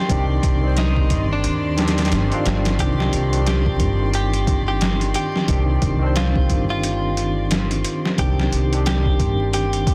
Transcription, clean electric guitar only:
0.00 0.24 G4 medium
0.78 1.25 D#4 medium
1.33 2.69 D4 medium
2.80 3.42 G4 medium
3.47 4.09 G4 medium
4.15 4.62 G4 medium
4.68 5.11 G4 medium
5.15 5.63 G4 medium
6.17 6.64 F4 medium
6.70 8.08 F4 medium
8.19 8.81 G4 loud
8.87 9.48 G4 medium
9.54 9.94 G4 medium

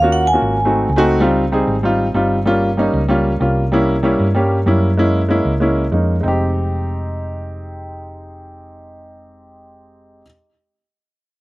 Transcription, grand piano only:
0.02 0.24 A#3 medium
0.02 0.25 C#4 medium
0.02 0.25 F4 medium
0.02 0.25 F#4 medium
0.33 0.56 A#3 medium
0.33 0.56 C#4 medium
0.33 0.56 F4 medium
0.33 0.57 F#4 medium
0.65 0.87 A3 medium
0.65 0.88 C4 medium
0.65 0.88 D#4 medium
0.65 0.88 F#4 medium
0.96 1.19 A3 medium
0.96 1.19 C4 medium
0.96 1.20 D#4 medium
0.96 1.20 F#4 loud
1.20 1.43 G3 medium
1.20 1.43 C4 medium
1.20 1.43 D#4 medium
1.20 1.43 F4 medium
1.52 1.74 G3 medium
1.52 1.74 C4 medium
1.52 1.75 D#4 medium
1.52 1.75 G#4 medium
1.83 2.05 G3 medium
1.83 2.06 C4 medium
1.83 2.06 D#4 medium
1.83 2.07 F4 loud
2.14 2.37 G3 medium
2.14 2.37 C4 medium
2.14 2.38 D#4 medium
2.14 2.38 F4 medium
2.45 2.68 G3 medium
2.45 2.68 A#3 medium
2.45 2.69 C#4 medium
2.45 2.69 F4 loud
2.77 3.00 G3 medium
2.77 3.00 A#3 medium
2.77 3.00 C#4 medium
2.77 3.01 D#4 medium
3.08 3.31 G3 medium
3.08 3.31 A#3 medium
3.08 3.32 C#4 medium
3.08 3.32 F4 medium
3.40 3.63 G3 medium
3.40 3.63 A#3 medium
3.40 3.63 C#4 medium
3.40 3.63 F4 medium
3.72 3.94 G3 medium
3.72 3.95 A#3 medium
3.72 3.95 C#4 medium
3.72 3.95 E4 loud
4.03 4.25 G3 medium
4.03 4.26 A#3 medium
4.03 4.26 C#4 medium
4.03 4.26 E4 medium
4.35 4.57 G3 medium
4.35 4.57 A#3 medium
4.35 4.58 C#4 medium
4.35 4.58 G4 medium
4.66 4.88 G3 medium
4.66 4.89 A#3 medium
4.66 4.89 C#4 medium
4.66 4.89 E4 medium
4.97 5.20 G#3 medium
4.97 5.20 A#3 medium
4.97 5.20 C#4 medium
4.97 5.21 E4 medium
5.29 5.51 G#3 medium
5.29 5.52 A#3 medium
5.29 5.52 C#4 medium
5.29 5.52 E4 medium
5.60 5.83 G#3 medium
5.60 5.83 A#3 medium
5.60 5.83 C#4 medium
5.60 5.84 E4 medium
5.92 6.14 G#3 medium
5.92 6.15 A#3 medium
5.92 6.15 C#4 medium
5.92 6.15 D#4 medium
6.20 10.20 G#3 medium
6.20 10.21 C4 medium
6.25 10.22 D#4 medium
6.25 10.23 G4 medium

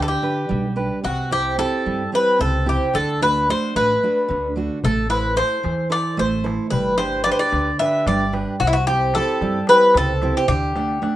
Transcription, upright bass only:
0.00 0.15 D2 medium
0.51 0.89 B1 loud
1.05 1.62 C2 medium
1.86 2.05 G2 medium
2.40 2.78 C#2 medium
2.95 3.52 D2 medium
3.76 3.95 A1 medium
4.30 4.68 D2 medium
4.84 5.41 A1 medium
5.65 5.84 E2 medium
6.19 6.56 A1 medium
6.73 7.29 G1 medium
7.53 7.72 D2 medium
8.07 8.44 G1 medium
8.62 9.18 C2 medium
9.41 9.60 G2 medium
9.95 10.32 C#2 medium
10.48 11.05 D2 medium

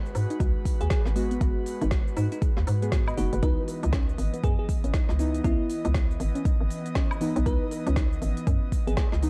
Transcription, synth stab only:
0.00 1.13 G#3 medium
0.00 1.13 B3 medium
0.00 1.14 F#4 loud
1.15 1.38 G#3 loud
1.15 1.39 B3 medium
1.15 1.39 F#4 loud
1.40 2.79 G#3 medium
1.40 2.79 B3 medium
1.40 2.80 F#4 loud
2.82 3.15 G#3 medium
2.82 3.15 B3 medium
2.82 3.15 G#4 medium
3.17 3.35 G#3 medium
3.17 3.35 B3 medium
3.17 3.35 F#4 medium
3.42 5.16 E3 medium
3.42 5.17 B3 medium
3.42 5.17 D#4 loud
5.19 5.42 E3 medium
5.19 5.42 B3 medium
5.19 5.42 D#4 loud
5.43 7.18 E3 medium
5.43 7.18 B3 medium
5.43 7.19 D#5 loud
7.20 7.43 E3 loud
7.20 7.44 B3 medium
7.20 7.44 D#4 loud
7.45 9.20 E3 medium
7.45 9.20 B3 medium
7.45 9.21 D#4 loud
9.22 9.30 E3 loud
9.22 9.30 B3 medium
9.22 9.30 D#4 loud

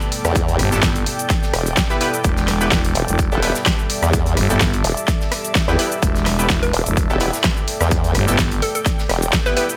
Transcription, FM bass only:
0.59 0.70 G1 loud
0.72 1.05 G1 medium
2.24 2.70 E1 loud
2.72 2.94 E1 loud
3.08 3.30 E1 loud
4.37 4.48 G1 loud
4.50 4.83 G1 loud
6.03 6.48 E1 loud
6.50 6.72 E1 loud
6.86 7.08 E1 medium
8.15 8.26 G1 loud
8.28 8.60 G1 medium

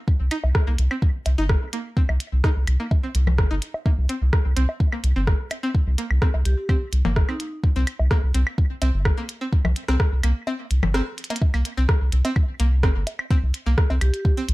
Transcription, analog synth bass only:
0.20 0.29 C2 loud
0.44 0.52 C2 medium
0.67 0.76 C2 medium
0.78 0.88 C2 medium
1.26 1.35 C2 medium
1.38 1.56 G1 loud
2.09 2.18 C2 medium
2.33 2.41 C2 medium
2.56 2.65 C2 medium
2.68 2.77 C2 medium
3.15 3.40 C2 loud
3.38 3.48 G1 loud
3.51 3.59 G1 medium
3.98 4.07 C2 loud
4.22 4.30 C2 medium
4.45 4.54 C2 medium
4.57 4.66 C2 medium
5.04 5.13 C2 medium
5.16 5.34 G1 loud
5.87 5.96 C2 loud
6.10 6.19 C2 medium
6.34 6.43 C2 medium
6.45 6.55 C2 medium
6.93 7.02 C2 medium
7.05 7.23 G1 loud
7.76 7.85 C2 loud
8.00 8.08 C2 medium
8.23 8.32 C2 medium
8.34 8.44 C2 medium
8.82 8.91 C2 medium
8.94 9.12 G1 loud
9.65 9.74 C2 loud
9.88 9.97 C2 medium
10.12 10.21 C2 medium
10.23 10.33 C2 medium
10.71 10.80 C2 medium
10.83 11.01 G1 loud
11.54 11.63 C2 loud
11.78 11.86 C2 medium
12.01 12.10 C2 medium
12.12 12.22 C2 medium
12.60 12.85 C2 loud
12.83 12.93 G1 loud
12.96 13.04 G1 medium
13.43 13.52 C2 loud
13.66 13.75 C2 medium
13.90 13.99 C2 medium
14.01 14.11 C2 medium
14.48 14.54 C2 loud

